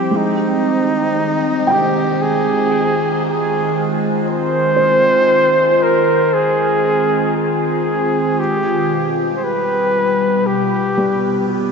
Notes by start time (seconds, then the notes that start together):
Already playing: F3 G3 C4 E4 G4 C5 G5
0.11 D#3 G#3
0.16 D#4
0.93 G#3
1.67 G5
1.72 F4 G4
2.22 G#4
3.26 G#4
4.28 C5
4.76 C5
5.83 A#4
6.34 G#4
7.37 G#4
8.37 B2 G4
8.93 G3
9.36 C5
9.44 B4
9.95 B3 G4
10.22 B4
10.46 G4
10.97 G3
11.49 G4